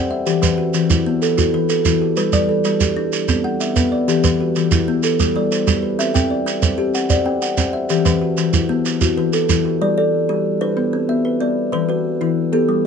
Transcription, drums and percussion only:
0.26 shekere medium
0.43 shekere medium
0.74 shekere soft
0.90 shekere medium
1.22 shekere medium
1.38 shekere medium
1.69 shekere medium
1.85 shekere medium
2.17 shekere medium
2.33 shekere medium
2.64 shekere soft
2.81 shekere medium
3.13 shekere medium
3.28 shekere medium
3.61 shekere medium
3.76 shekere medium
4.09 shekere medium
4.24 shekere medium
4.56 shekere medium
4.71 shekere medium
5.03 shekere medium
5.20 shekere medium
5.52 shekere medium
5.67 shekere medium
6.00 shekere medium
6.15 shekere medium
6.47 shekere medium
6.62 shekere medium
6.94 shekere medium
7.10 shekere medium
7.42 shekere medium
7.57 shekere medium
7.89 shekere medium
8.06 shekere medium
8.37 shekere medium
8.53 shekere medium
8.85 shekere medium
9.01 shekere medium
9.33 shekere medium
9.49 shekere medium

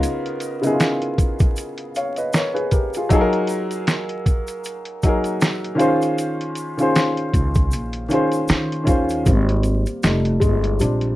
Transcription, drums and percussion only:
0.03 closed hi-hat medium
0.03 shaker medium
0.26 closed hi-hat soft
0.40 closed hi-hat medium
0.40 shaker medium
0.63 closed hi-hat soft
0.63 shaker medium
0.80 snare loud
0.80 closed hi-hat medium
0.80 shaker medium
1.02 closed hi-hat soft
1.18 kick medium
1.18 closed hi-hat medium
1.18 shaker soft
1.39 kick loud
1.39 closed hi-hat medium
1.39 shaker medium
1.56 closed hi-hat medium
1.56 shaker medium
1.78 closed hi-hat medium
1.95 closed hi-hat medium
1.95 shaker soft
2.16 closed hi-hat soft
2.16 shaker soft
2.33 snare loud
2.33 closed hi-hat medium
2.33 shaker medium
2.56 closed hi-hat soft
2.71 kick medium
2.71 closed hi-hat medium
2.71 shaker soft
2.94 closed hi-hat medium
2.94 shaker medium
3.10 kick loud
3.10 closed hi-hat medium
3.10 shaker medium
3.33 closed hi-hat soft
3.47 closed hi-hat medium
3.47 shaker medium
3.71 closed hi-hat soft
3.71 shaker medium
3.87 snare loud
3.87 closed hi-hat loud
3.87 shaker medium
4.09 closed hi-hat soft
4.26 kick medium
4.26 closed hi-hat medium
4.26 shaker medium
4.47 closed hi-hat soft
4.47 shaker soft
4.64 closed hi-hat medium
4.64 shaker medium
4.85 closed hi-hat soft
5.03 kick medium
5.03 closed hi-hat medium
5.03 shaker medium
5.24 closed hi-hat soft
5.24 shaker medium
5.41 snare loud
5.41 closed hi-hat medium
5.41 shaker medium
5.64 closed hi-hat soft
5.79 closed hi-hat medium
5.79 shaker soft
6.02 closed hi-hat soft
6.02 shaker medium
6.18 closed hi-hat medium
6.18 shaker medium
6.41 closed hi-hat soft
6.55 closed hi-hat medium
6.55 shaker medium
6.79 closed hi-hat soft
6.79 shaker medium
6.96 snare loud
6.96 closed hi-hat loud
6.96 shaker medium
7.17 closed hi-hat soft
7.34 kick medium
7.34 closed hi-hat medium
7.34 shaker soft
7.55 kick loud
7.55 closed hi-hat soft
7.55 shaker medium
7.71 closed hi-hat medium
7.71 shaker medium
7.93 closed hi-hat medium
8.10 closed hi-hat medium
8.10 shaker soft
8.32 closed hi-hat soft
8.32 shaker medium
8.48 snare loud
8.48 closed hi-hat medium
8.48 shaker medium
8.72 closed hi-hat soft
8.87 kick medium
8.87 closed hi-hat medium
8.87 shaker soft
9.09 closed hi-hat soft
9.09 shaker medium
9.26 kick loud
9.26 closed hi-hat medium
9.26 shaker medium
9.49 closed hi-hat soft
9.63 closed hi-hat medium
9.63 shaker medium
9.86 closed hi-hat soft
9.86 shaker medium
10.03 snare loud
10.03 closed hi-hat loud
10.03 shaker medium
10.25 closed hi-hat soft
10.42 kick medium
10.42 closed hi-hat medium
10.42 shaker soft
10.64 closed hi-hat soft
10.80 closed hi-hat medium
10.80 shaker medium
11.01 closed hi-hat soft

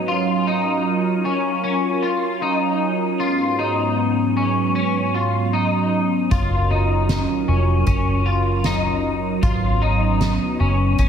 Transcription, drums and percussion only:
6.31 kick loud
6.31 closed hi-hat medium
7.09 snare medium
7.09 closed hi-hat medium
7.87 kick medium
7.87 closed hi-hat medium
8.64 snare medium
8.64 closed hi-hat medium
9.43 kick loud
9.43 closed hi-hat medium
10.21 snare medium
10.21 closed hi-hat medium
10.98 kick medium
10.98 closed hi-hat medium

